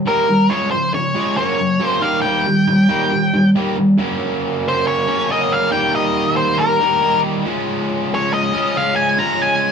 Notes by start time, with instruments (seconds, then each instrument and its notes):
0.05 distorted electric guitar D#3 G3 A#3, lead electric guitar A#4
0.28 distorted electric guitar D#3 G3
0.50 distorted electric guitar C#3 F3 G#3, lead electric guitar C#5
0.71 distorted electric guitar C#3 F3, lead electric guitar C5
0.94 distorted electric guitar C#3 F3, lead electric guitar C#5
1.14 distorted electric guitar C#3 F3 G#3
1.36 distorted electric guitar C#3 F#3 A#3, lead electric guitar C#5
1.59 distorted electric guitar C#3 F#3
1.79 distorted electric guitar C#3 F#3 A#3
1.85 lead electric guitar C5
2.01 distorted electric guitar D#3 G3 A#3, lead electric guitar F5
2.22 distorted electric guitar D#3 G3 A#3, lead electric guitar G5
2.46 distorted electric guitar D#3 G3
2.67 distorted electric guitar D#3 G3
2.89 distorted electric guitar D#3 G3 A#3
3.12 distorted electric guitar D#3 G3
3.34 distorted electric guitar D#3 G3
3.55 distorted electric guitar D#3 G3 A#3
3.78 distorted electric guitar D#3 G3
3.98 distorted electric guitar F#2 C#3 F#3 A#3 C#4
4.68 lead electric guitar C5
4.87 lead electric guitar C#5
5.07 distorted electric guitar F#2 C#3 F#3 A#3 C#4
5.29 distorted electric guitar F#2 C#3 F#3 A#3 C#4, lead electric guitar D#5
5.52 lead electric guitar F5
5.72 distorted electric guitar D#3 G3 A#3 D#4, lead electric guitar G5
5.95 lead electric guitar D#5
6.37 lead electric guitar C5
6.58 lead electric guitar A#4
6.80 distorted electric guitar D#3 G3 A#3 D#4
7.01 distorted electric guitar D#3 G3 A#3 D#4
7.45 distorted electric guitar C#3 F3 G#3 C#4
8.15 lead electric guitar C#5
8.34 lead electric guitar D#5
8.53 distorted electric guitar C#3 F3 G#3 C#4
8.74 distorted electric guitar C#3 F3 G#3 C#4, lead electric guitar F5
8.96 lead electric guitar G#5
9.18 distorted electric guitar C#3 F3 G#3 C#4, lead electric guitar A#5
9.42 lead electric guitar G#5